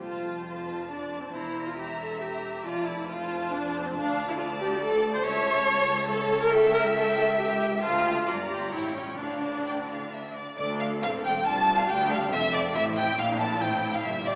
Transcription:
0.01 F1 F2 F4 C5 A5
0.46 F4 A5
0.89 D4 D5
1.23 C4
1.33 E1 E2 E4 C5 A#5
1.67 F4
1.77 G4 E5 A#5
2.00 A4
2.22 G4 A#5
2.65 F1 F2 F4 D5 A5
2.88 E4
3.10 F4 C5 A5
3.53 D4
3.86 C4
3.96 D2 D4 F5 A5
4.29 E4
4.38 F4 D5 A5
4.60 G4
4.81 A4 A5
5.14 C5
5.24 C#2 C#5 E5 A5
5.67 A4
6.09 A4 C#5 A5
6.43 A#4
6.53 A4 E5 G5
6.74 A#4
6.96 A4 G5
7.18 A4
7.40 G4 G5
7.84 D2 F4 F5 A5
8.28 G1 G2 F4 D5 A#5
8.51 G4
8.73 A1 A2 E4 C#5 G5
8.96 C#4
9.19 D2 D3 D4 D5 F5
9.66 G5
9.90 F5
10.13 E5
10.36 D5
10.58 D2 D4 A4 D5
10.80 F5
11.02 E1 E2 C4 F5
11.24 G5
11.46 C2 D4 F4 A5
11.79 F5
11.89 D2 D4 G4 G5
12.12 F5
12.33 F1 F2 C4 A4 E5
12.54 D5
12.75 A1 A2 C4 E4 E5
12.97 G5
13.18 A#1 A#2 D4 F5
13.39 A5
13.61 A1 A2 C4 G5
13.93 F5
14.04 G1 G2 A#3 E5
14.27 D5

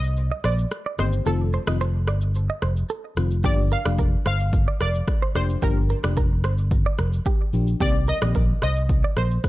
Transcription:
Already playing: C2 D#5
0.03 shaker
0.17 shaker
0.32 D#5
0.44 A#1 C5 D5, cross-stick, shaker
0.58 shaker
0.71 cross-stick, shaker
0.86 D5
0.98 G1 D#3 A#3 C4 G4 C5 D#5, cross-stick, shaker
1.13 shaker
1.26 F1 D#3 A3 C4 F4 A4, shaker
1.53 C5, shaker
1.67 F1 D#3 A3 C4 F4 D#5, cross-stick, shaker
1.80 C5, shaker
2.08 G1 D5, cross-stick, shaker
2.21 shaker
2.35 shaker
2.50 D#5
2.62 F1 C5, cross-stick, shaker
2.77 shaker
2.89 A4, shaker
3.17 F1 D#3 A3 C4 F4, cross-stick, shaker
3.31 shaker
3.44 G1 F3 A#3 D4 G4 D5, kick, shaker
3.71 A#4 F5, shaker
3.85 F1 F3 A#3 D4 G4 D5, cross-stick, shaker
3.99 A#4, kick, shaker
4.26 G1 C5 F5, cross-stick, shaker
4.40 shaker
4.53 kick, shaker
4.68 D5
4.81 F1 A#4 D5, cross-stick, shaker
4.95 shaker
5.08 kick, cross-stick, shaker
5.22 C5
5.35 F1 F3 A#3 D4 G4 C5 D5, cross-stick, shaker
5.49 shaker
5.62 G1 F3 A#3 D4 G4 A#4, kick, shaker
5.89 A#4, shaker
6.04 F1 F3 A#3 D4 G4 D5, cross-stick, shaker
6.17 A#4, kick, shaker
6.44 G1 C5, cross-stick, shaker
6.58 shaker
6.71 kick, shaker
6.86 D5
6.99 F1 A#4, cross-stick, shaker
7.13 shaker
7.26 G4, kick, shaker
7.53 A#1 F3 A#3 D4 G4, shaker
7.67 shaker
7.80 C2 D#3 A#3 C4 G4 D5, kick, shaker
8.08 A#4 D#5, shaker
8.22 A#1 D#3 A#3 C4 G4 D5, cross-stick, shaker
8.35 A#4, kick, shaker
8.62 C2 C5 D#5, cross-stick, shaker
8.76 shaker
8.89 kick, shaker
9.04 D5
9.17 A#1 A#4 C5, cross-stick, shaker
9.31 shaker
9.44 kick, cross-stick, shaker

